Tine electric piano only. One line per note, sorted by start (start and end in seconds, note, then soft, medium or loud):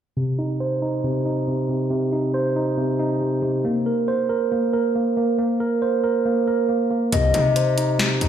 0.17 1.02 C3 medium
0.39 0.81 D#4 medium
0.60 1.91 C5 medium
0.82 1.24 D#4 medium
1.04 1.46 C3 medium
1.26 2.11 D#4 medium
1.47 1.68 C3 medium
1.69 1.89 C3 medium
1.91 2.76 C3 medium
2.13 2.55 D#4 medium
2.34 3.65 C5 loud
2.56 2.98 D#4 medium
2.77 3.20 C3 medium
2.99 3.65 D#4 medium
3.21 3.41 C3 medium
3.43 3.65 C3 medium
3.65 4.51 A#3 medium
3.86 4.28 A#4 medium
4.08 5.39 C5 medium
4.29 4.72 A#4 medium
4.52 4.94 A#3 medium
4.73 5.59 A#4 medium
4.95 5.16 A#3 medium
5.17 5.37 A#3 medium
5.38 6.24 A#3 medium
5.60 6.02 A#4 medium
5.82 7.12 C5 medium
6.04 6.46 A#4 medium
6.26 6.68 A#3 medium
6.47 7.13 A#4 medium
6.69 6.89 A#3 medium
6.91 7.12 A#3 medium
7.12 7.98 C3 medium
7.34 7.77 D#4 medium
7.56 8.29 C5 medium
7.78 8.20 D#4 medium
7.99 8.29 C3 medium
8.21 8.29 D#4 medium